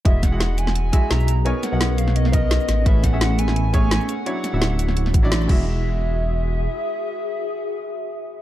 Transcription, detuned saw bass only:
X:1
M:4/4
L:1/16
Q:1/4=171
K:E
V:1 name="Detuned saw bass" clef=bass
E,,,8- E,,,2 z2 B,,,4- | B,,, z2 B,,,8- B,,,2 z A,,,2- | A,,,3 A,,,8- A,,,2 z3 | z3 =D,,,6- D,,, A,,,4 E,,,2- |
E,,,12 z4 | z16 |]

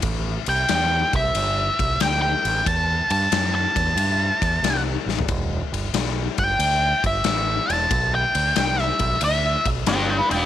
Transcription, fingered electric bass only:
X:1
M:4/4
L:1/8
Q:"Swing" 1/4=92
K:Em
V:1 name="Fingered electric bass" clef=bass
A,,, C,, E,, C,, G,,, C,, D,, A,,, | E,, G,, F,, E,, G,, E,, C,, A,,, | E,,, G,,, B,,, G,,, D,, G,,, A,,, E,,, | B,,, D,, C,, B,,, D,, B,,, G,,, E,,, |]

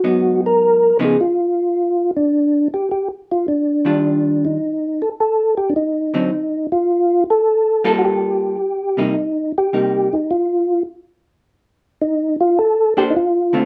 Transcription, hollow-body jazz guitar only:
X:1
M:4/4
L:1/8
Q:"Swing" 1/4=105
K:Bb
V:1 name="Hollow-body jazz guitar"
[_A,,_G,_CE]3 [^C,F,_CE] z4 | z4 z [E,G,DF]3 | z4 z [D,^F,CE] z2 | z3 [G,B,FA]3 z [C,G,B,E] |
z2 [C,G,B,E] z4 z | z4 z [B,DAc] z [D,A,CF] |]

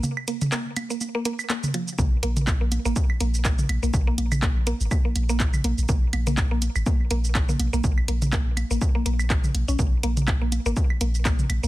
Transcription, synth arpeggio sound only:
X:1
M:4/4
L:1/16
Q:"Swing 16ths" 1/4=123
K:Ab
V:1 name="Synth arpeggio sound"
z2 B, z B, z2 B, z B, B, z B, z F, z | B, z B, z2 B, z B, z2 B, z B, z2 B, | z B, z2 B, z B, z2 B, z B, z2 B, z | B, z2 B, z B, z2 B, z B, z2 B, z B, |
z2 B, z B, z2 B, z B, B, z B, z2 D | B, z B, z2 B, z B, z2 B, z B, z2 B, |]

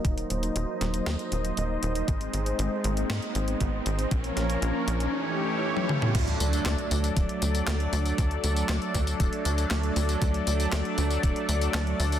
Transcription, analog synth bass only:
X:1
M:4/4
L:1/8
Q:1/4=118
K:Ebdor
V:1 name="Analog synth bass" clef=bass
E,,, E,,, E,,, E,,, E,, E,,, E,,, E,,, | A,,, A,,, A,,, A,,, A,, A,,, A,,, A,,, | B,,, B,,, B,,, B,,, z4 | [K:D] D,, D,, D,, D,, D,,, D,, D,, D,, |
D,, D,, D,, D,, D,,, D,, D,, D,, | D,, D,, D,, D,, D,,, D,, D,, D,, |]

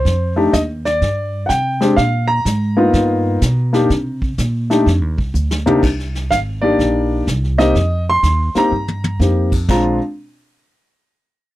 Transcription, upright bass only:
X:1
M:4/4
L:1/8
Q:"Swing" 1/4=124
K:Fdor
V:1 name="Upright bass" clef=bass
F,,2 E,,2 G,,2 C,2 | B,,2 A,,2 G,,2 =B,,2 | C,2 B,,2 (3F,, E,, C,, D,,2 | C,,2 A,,,2 B,,,2 C,,2 |
F,,2 E,, z G,,2 F,,2 | B,,, z6 z |]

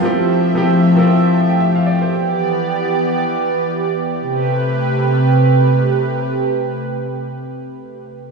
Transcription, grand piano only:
X:1
M:4/4
L:1/16
Q:"Swing 16ths" 1/4=115
K:Am
V:1 name="Grand piano"
[F,A,CEG]3 z [F,A,CEG]2 z [F,A,CEA]2 z a g e f d c- | c z12 z3 | z16 | z16 |]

